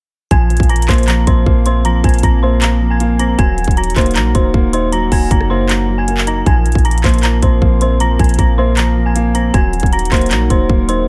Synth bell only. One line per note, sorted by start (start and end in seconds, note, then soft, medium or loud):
0.31 0.67 G#5 medium
0.31 0.68 G#6 medium
0.69 0.84 A#5 medium
0.69 0.85 A#6 medium
0.89 1.04 C5 medium
0.89 1.03 C6 medium
1.08 1.23 A#5 medium
1.08 1.23 A#6 medium
1.27 1.64 C5 medium
1.27 1.63 C6 medium
1.66 1.81 C5 medium
1.66 1.81 C6 medium
1.85 2.00 A#5 loud
1.85 2.00 A#6 medium
2.04 2.19 G#5 medium
2.04 2.19 G#6 medium
2.23 2.38 A#5 medium
2.23 2.38 A#6 medium
2.43 2.58 C5 medium
2.43 2.57 C6 medium
2.62 2.89 A#5 medium
2.62 2.89 A#6 medium
2.90 3.18 G#5 medium
2.90 3.18 G#6 medium
3.19 3.34 A#5 medium
3.19 3.34 A#6 medium
3.38 3.75 G#5 medium
3.38 3.75 G#6 medium
3.77 3.92 A#5 medium
3.77 3.92 A#6 medium
3.97 4.12 C5 medium
3.97 4.11 C6 medium
4.15 4.30 A#5 medium
4.15 4.31 A#6 medium
4.35 4.71 C5 medium
4.35 4.71 C6 medium
4.73 4.88 C5 medium
4.73 4.88 C6 medium
4.92 5.07 A#5 loud
4.92 5.08 A#6 medium
5.12 5.26 G#5 medium
5.12 5.27 G#6 medium
5.31 5.46 A#5 medium
5.31 5.46 A#6 medium
5.50 5.65 C5 medium
5.50 5.65 C6 medium
5.70 5.97 A#5 medium
5.70 5.97 A#6 medium
5.98 6.25 G#5 medium
5.98 6.26 G#6 medium
6.27 6.42 A#5 medium
6.27 6.42 A#6 medium
6.46 6.83 G#5 medium
6.46 6.83 G#6 medium
6.85 6.99 A#5 medium
6.85 7.00 A#6 medium
7.04 7.19 C5 medium
7.04 7.19 C6 medium
7.23 7.38 A#5 medium
7.23 7.38 A#6 medium
7.43 7.79 C5 medium
7.43 7.79 C6 medium
7.82 7.96 C5 medium
7.82 7.96 C6 medium
8.00 8.15 A#5 loud
8.00 8.15 A#6 medium
8.20 8.34 G#5 medium
8.20 8.35 G#6 medium
8.39 8.53 A#5 medium
8.39 8.54 A#6 medium
8.58 8.73 C5 medium
8.58 8.73 C6 medium
8.77 9.04 A#5 medium
8.77 9.05 A#6 medium
9.06 9.33 G#5 medium
9.06 9.33 G#6 medium
9.35 9.49 A#5 medium
9.35 9.50 A#6 medium
9.54 9.90 G#5 medium
9.54 9.90 G#6 medium
9.93 10.07 A#5 medium
9.93 10.08 A#6 medium
10.12 10.27 C5 medium
10.12 10.27 C6 medium
10.31 10.46 A#5 medium
10.31 10.46 A#6 medium
10.50 10.87 C5 medium
10.50 10.86 C6 medium
10.89 11.04 C5 medium
10.89 11.03 C6 loud